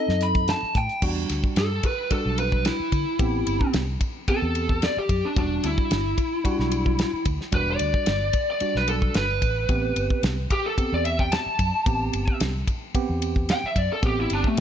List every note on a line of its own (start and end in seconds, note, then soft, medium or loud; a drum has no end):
0.00 0.60 C4 medium
0.00 0.60 D#4 medium
0.00 0.60 A4 medium
0.00 0.20 D#5 loud
0.08 0.52 F#2 medium
0.08 snare soft
0.21 0.49 B5 loud
0.21 closed hi-hat medium
0.35 kick medium
0.35 closed hi-hat soft
0.48 0.75 A5 loud
0.48 snare loud
0.48 closed hi-hat medium
0.63 muted fingered electric bass stroke soft
0.75 0.87 A2 medium
0.75 1.03 G5 loud
0.75 kick medium
0.75 closed hi-hat medium
0.89 closed hi-hat soft
1.02 1.24 E2 loud
1.02 1.68 G3 medium
1.02 1.68 D4 medium
1.02 1.69 F#4 medium
1.02 kick loud
1.02 crash loud
1.29 1.41 D2 medium
1.29 snare soft
1.29 ride bell medium
1.44 kick medium
1.56 1.78 G2 medium
1.56 1.84 A4 loud
1.56 snare loud
1.56 ride bell medium
1.83 2.11 B4 medium
1.83 kick medium
1.83 ride bell medium
2.11 2.76 G3 medium
2.11 2.77 D4 medium
2.11 2.77 F#4 medium
2.11 2.38 A4 medium
2.11 muted fingered electric bass stroke soft
2.11 kick medium
2.11 ride bell medium
2.25 2.69 B1 medium
2.38 2.65 B4 medium
2.38 ride bell medium
2.52 kick medium
2.65 3.71 E4 medium
2.65 snare loud
2.65 ride bell medium
2.80 muted fingered electric bass stroke soft
2.92 3.04 D3 medium
2.92 kick medium
2.92 ride bell medium
3.19 3.41 A1 loud
3.19 3.85 B3 medium
3.19 3.85 C4 medium
3.19 3.85 G4 medium
3.19 kick loud
3.19 ride bell medium
3.47 3.58 G1 medium
3.47 ride bell medium
3.61 kick medium
3.73 3.96 C2 loud
3.73 snare loud
3.73 ride bell medium
4.01 kick medium
4.01 ride bell medium
4.28 4.94 B3 medium
4.28 4.94 C4 medium
4.28 4.94 G4 medium
4.28 4.81 A4 medium
4.28 muted fingered electric bass stroke soft
4.28 kick medium
4.28 ride bell medium
4.42 4.86 E2 medium
4.55 ride bell medium
4.69 kick medium
4.82 4.97 D5 medium
4.82 snare loud
4.82 ride bell medium
4.97 5.24 G4 medium
4.97 muted fingered electric bass stroke soft
5.09 5.21 F#2 medium
5.09 kick medium
5.09 ride bell medium
5.25 5.37 D4 medium
5.36 5.58 E1 loud
5.36 6.02 G3 medium
5.36 6.02 D4 medium
5.36 5.64 D4 medium
5.36 6.02 F#4 medium
5.36 kick loud
5.36 ride bell medium
5.64 5.75 D2 medium
5.64 7.23 E4 medium
5.64 ride bell medium
5.78 kick medium
5.91 6.13 G1 medium
5.91 snare loud
5.91 ride bell medium
6.18 kick medium
6.18 ride bell medium
6.44 7.10 G3 medium
6.44 7.10 D4 medium
6.44 7.10 F#4 medium
6.44 muted fingered electric bass stroke soft
6.44 kick medium
6.44 ride bell medium
6.59 7.03 B1 medium
6.59 snare soft
6.72 ride bell medium
6.86 kick medium
6.99 snare loud
6.99 ride bell medium
7.13 muted fingered electric bass stroke soft
7.25 7.37 D2 medium
7.25 kick medium
7.25 ride bell medium
7.41 snare soft
7.52 7.75 E1 loud
7.52 8.18 G3 medium
7.52 8.18 D4 medium
7.52 8.18 F#4 medium
7.52 7.68 B4 medium
7.52 kick loud
7.52 ride bell medium
7.70 8.48 D5 medium
7.79 7.92 D2 medium
7.79 ride bell medium
7.94 kick medium
8.06 8.29 G1 loud
8.06 snare loud
8.06 ride bell medium
8.33 kick medium
8.33 ride bell medium
8.50 8.76 D5 medium
8.60 9.27 G3 medium
8.60 9.27 D4 medium
8.60 9.27 F#4 medium
8.60 muted fingered electric bass stroke soft
8.60 ride bell medium
8.75 9.08 B1 medium
8.75 8.89 B4 medium
8.75 snare soft
8.88 9.15 A4 medium
8.88 ride bell medium
9.02 kick medium
9.14 9.40 G1 medium
9.14 10.21 B4 loud
9.14 snare loud
9.14 ride bell medium
9.42 9.67 A1 medium
9.42 kick medium
9.42 ride bell medium
9.69 9.91 A1 loud
9.69 10.35 B3 medium
9.69 10.35 C4 medium
9.69 10.35 G4 medium
9.69 kick loud
9.69 ride bell medium
9.96 10.08 G1 medium
9.96 ride bell medium
10.10 kick medium
10.23 10.45 C2 medium
10.23 snare loud
10.23 ride bell medium
10.50 10.65 G4 medium
10.50 kick medium
10.50 ride bell medium
10.66 10.92 A4 medium
10.78 11.43 B3 medium
10.78 11.44 C4 medium
10.78 11.44 G4 medium
10.78 muted fingered electric bass stroke soft
10.78 kick medium
10.78 ride bell medium
10.92 11.36 E2 medium
10.92 11.05 D5 medium
11.05 11.19 E5 medium
11.05 ride bell medium
11.19 11.32 G5 medium
11.19 kick medium
11.32 12.38 A5 loud
11.32 snare loud
11.32 ride bell medium
11.46 muted fingered electric bass stroke soft
11.59 11.71 F#2 medium
11.59 kick medium
11.59 ride bell medium
11.86 12.08 A1 loud
11.86 12.52 B3 medium
11.86 12.52 C4 medium
11.86 12.52 G4 medium
11.86 kick loud
11.86 ride bell medium
12.13 12.25 G1 medium
12.13 ride bell medium
12.28 kick medium
12.40 12.62 C2 loud
12.40 snare loud
12.40 ride bell medium
12.68 kick medium
12.68 ride bell medium
12.95 13.60 B3 medium
12.95 13.60 C4 medium
12.95 13.60 G4 loud
12.95 muted fingered electric bass stroke soft
12.95 kick medium
12.95 ride bell medium
13.09 13.53 E2 medium
13.22 ride bell medium
13.36 kick medium
13.49 13.64 G5 loud
13.49 snare loud
13.49 ride bell medium
13.64 13.78 E5 medium
13.64 muted fingered electric bass stroke soft
13.76 13.87 F#2 medium
13.76 13.91 D5 loud
13.76 kick medium
13.76 ride bell medium
13.93 14.04 A4 loud
14.02 14.25 A1 loud
14.02 14.60 B3 medium
14.02 14.60 C4 medium
14.02 14.60 G4 medium
14.02 14.18 G4 medium
14.02 kick loud
14.02 ride bell medium
14.21 14.31 E4 medium
14.30 14.42 G1 medium
14.30 14.46 D4 medium
14.30 ride bell medium
14.44 14.58 A3 medium
14.44 kick medium